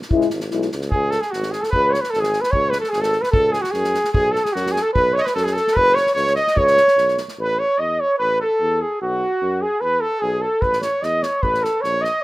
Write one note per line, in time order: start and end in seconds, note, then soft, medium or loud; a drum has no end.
0.02 snare soft
0.11 0.23 C#2 loud
0.11 0.30 G#3 medium
0.11 0.28 E4 medium
0.11 kick medium
0.21 snare soft
0.30 0.51 G#1 medium
0.30 snare soft
0.40 snare soft
0.51 0.71 B1 loud
0.51 0.69 G#3 medium
0.51 0.67 E4 medium
0.51 snare soft
0.62 snare soft
0.72 0.91 C#2 medium
0.72 snare soft
0.81 snare soft
0.91 1.16 C#2 loud
0.91 1.12 G#4 medium
0.91 1.15 G#4 medium
0.91 kick medium
1.10 1.22 A4 medium
1.10 1.25 A4 medium
1.10 snare soft
1.20 1.32 G#4 medium
1.20 1.34 G#4 medium
1.20 snare soft
1.31 1.56 G#1 medium
1.31 1.53 F#4 medium
1.31 1.54 F#4 medium
1.31 snare soft
1.43 snare soft
1.51 1.62 G#4 medium
1.51 1.65 G#4 medium
1.51 snare soft
1.60 1.70 A4 medium
1.60 1.72 A4 medium
1.60 snare soft
1.70 1.92 B4 medium
1.70 1.94 B4 loud
1.70 kick medium
1.75 1.96 C#2 loud
1.90 2.02 C#5 medium
1.90 2.03 C#5 medium
1.90 snare soft
2.00 2.12 B4 medium
2.00 2.13 B4 medium
2.00 snare soft
2.10 2.22 A4 medium
2.10 2.23 A4 medium
2.10 snare soft
2.15 2.37 G#1 medium
2.20 2.42 G#4 medium
2.20 2.43 G#4 medium
2.20 snare soft
2.33 snare soft
2.41 2.53 B4 medium
2.41 2.52 B4 medium
2.41 snare soft
2.51 2.77 C#2 loud
2.51 2.71 C#5 loud
2.51 2.72 C#5 medium
2.51 kick medium
2.69 2.79 B4 medium
2.69 2.80 B4 medium
2.69 snare soft
2.80 2.90 A4 medium
2.80 2.93 A4 medium
2.80 snare soft
2.89 3.02 G#4 medium
2.89 3.03 G#4 medium
2.93 3.17 G#1 loud
2.93 snare soft
3.00 3.23 A4 medium
3.00 3.24 A4 medium
3.00 snare soft
3.12 snare soft
3.21 3.30 B4 medium
3.21 3.32 B4 medium
3.21 snare soft
3.31 3.57 C#2 loud
3.31 3.53 A4 loud
3.31 3.54 A4 medium
3.31 kick loud
3.52 3.63 G#4 medium
3.52 3.64 G#4 medium
3.52 snare soft
3.61 3.73 F#4 medium
3.61 snare soft
3.71 3.97 F#2 medium
3.71 4.11 G#4 medium
3.71 4.13 G#4 medium
3.71 snare soft
3.84 snare soft
3.94 snare soft
4.04 snare soft
4.12 4.37 B1 medium
4.12 4.33 G#4 medium
4.12 4.34 G#4 loud
4.12 kick medium
4.32 4.46 A4 medium
4.32 snare soft
4.44 4.54 G#4 medium
4.44 4.56 G#4 medium
4.44 snare soft
4.53 4.78 F#2 loud
4.53 4.74 F#4 medium
4.53 4.73 F#4 medium
4.53 snare soft
4.66 snare soft
4.71 4.84 G#4 medium
4.71 4.83 G#4 loud
4.76 snare soft
4.82 4.92 A4 medium
4.82 4.93 A4 medium
4.93 5.17 B1 loud
4.93 5.15 B4 loud
4.93 5.17 B4 medium
4.93 kick medium
5.13 5.20 C#5 loud
5.13 5.18 C#5 medium
5.18 5.22 C#5 medium
5.18 5.28 C#5 medium
5.18 5.22 D#5 medium
5.18 5.26 D#5 medium
5.24 5.34 B4 medium
5.24 5.35 B4 medium
5.24 snare soft
5.34 5.58 F#2 medium
5.34 5.45 A4 medium
5.34 5.48 A4 loud
5.34 snare soft
5.43 5.54 G#4 medium
5.43 5.57 G#4 medium
5.43 snare soft
5.53 5.75 A4 medium
5.53 5.78 A4 loud
5.53 snare soft
5.67 snare soft
5.73 5.98 F#1 loud
5.73 5.95 B4 medium
5.73 5.97 B4 loud
5.73 kick medium
5.94 6.13 C#5 medium
5.94 6.15 C#5 loud
5.94 snare soft
6.07 snare soft
6.13 6.39 C#2 loud
6.13 6.34 C#5 medium
6.13 6.35 C#5 loud
6.13 snare soft
6.27 snare soft
6.35 6.57 D#5 medium
6.35 6.59 D#5 loud
6.35 snare soft
6.47 snare soft
6.56 6.79 C#2 loud
6.56 7.17 C#5 medium
6.56 7.18 C#5 loud
6.56 kick medium
6.67 snare soft
6.77 snare soft
6.88 snare soft
6.97 7.19 B1 medium
6.97 snare soft
7.08 snare soft
7.17 snare soft
7.28 snare soft
7.38 7.61 A1 loud
7.38 7.60 B4 medium
7.38 7.61 B4 medium
7.59 7.82 C#5 medium
7.59 7.80 C#5 medium
7.79 8.01 E2 medium
7.79 8.02 D#5 medium
8.00 8.18 C#5 loud
8.00 8.19 C#5 medium
8.19 8.42 A1 medium
8.19 8.38 B4 loud
8.19 8.38 B4 medium
8.41 8.83 A4 medium
8.41 8.84 A4 loud
8.61 8.83 E2 medium
8.81 9.01 G#4 medium
9.02 9.24 B1 medium
9.02 9.64 F#4 medium
9.02 9.63 F#4 medium
9.42 9.64 F#2 medium
9.61 9.82 G#4 medium
9.61 9.82 G#4 loud
9.80 10.04 E2 medium
9.80 10.03 B4 medium
9.80 10.02 B4 loud
10.00 10.21 A4 medium
10.00 10.23 A4 medium
10.20 10.44 B1 loud
10.20 10.43 G#4 medium
10.41 10.63 A4 medium
10.41 10.65 A4 medium
10.61 10.85 A1 medium
10.61 10.80 B4 medium
10.61 10.83 B4 medium
10.61 kick medium
10.73 snare soft
10.81 11.04 C#5 medium
10.81 11.06 C#5 medium
10.81 snare soft
11.02 11.25 E2 medium
11.02 11.24 D#5 medium
11.02 11.27 D#5 medium
11.02 snare soft
11.22 11.44 C#5 medium
11.22 snare soft
11.42 11.66 A1 medium
11.42 11.65 B4 loud
11.42 11.64 B4 medium
11.42 kick medium
11.54 snare soft
11.62 11.84 A4 medium
11.62 11.83 A4 medium
11.62 snare soft
11.81 12.07 A#1 medium
11.81 12.03 C#5 loud
11.81 12.06 C#5 medium
11.81 snare soft
12.01 12.23 D#5 loud
12.01 12.24 D#5 medium
12.01 snare soft